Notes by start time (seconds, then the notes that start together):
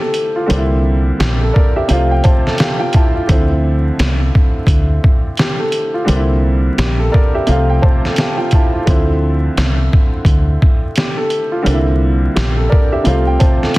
Already playing: D3 F3 A3 C4 G4
0.01 A4
0.14 closed hi-hat
0.36 F4
0.46 C2 D3 G3 A#3 C4, closed hi-hat
0.51 D4
0.58 E4
1.20 A#1 G4, snare, closed hi-hat
1.41 A4
1.53 A#4 D5, kick
1.76 G4 E5
1.88 C2 C3 F3 A3 C4 F5, closed hi-hat
1.93 F4
2.11 G5
2.24 C5 A5, kick, closed hi-hat
2.47 A4, snare
2.58 G4 F5, snare, closed hi-hat
2.79 F4 G5
2.93 E4 A5, kick, closed hi-hat
3.15 F4
3.27 D2 D3 F3 A3 C4, kick, closed hi-hat
3.32 E4
3.99 C2, snare, closed hi-hat
4.35 kick
4.67 D2, kick, closed hi-hat
5.04 kick
5.37 G4, snare, closed hi-hat
5.59 A4
5.72 closed hi-hat
5.94 F4
6.05 C2 D3 G3 A#3 C4, closed hi-hat
6.10 D4
6.16 E4
6.78 A#1 G4, snare, closed hi-hat
6.99 A4
7.12 A#4 D5, kick
7.35 G4 E5
7.47 C2 C3 F3 A3 C4 F5, closed hi-hat
7.51 F4
7.70 G5
7.82 C5 A5, kick
8.05 A4, snare
8.16 G4 F5, snare, closed hi-hat
8.37 F4 G5
8.51 E4 A5, kick, closed hi-hat
8.73 F4
8.85 D2 D3 F3 A3 C4, kick, closed hi-hat
8.90 E4
9.57 C2, snare, closed hi-hat
9.93 kick
10.25 D2, kick, closed hi-hat
10.62 kick
10.96 G4, snare, closed hi-hat
11.17 A4
11.30 closed hi-hat
11.52 F4
11.63 D3 G3 A#3 C4, closed hi-hat
11.67 C2 D4
11.74 E4
12.36 A#1 G4, snare, closed hi-hat
12.57 A4
12.69 A#4 D5, kick
12.92 G4 E5
13.04 C2 C3 F3 A3 C4 F5, closed hi-hat
13.09 F4
13.27 G5
13.39 C5 A5, kick, closed hi-hat
13.63 A4, snare
13.74 closed hi-hat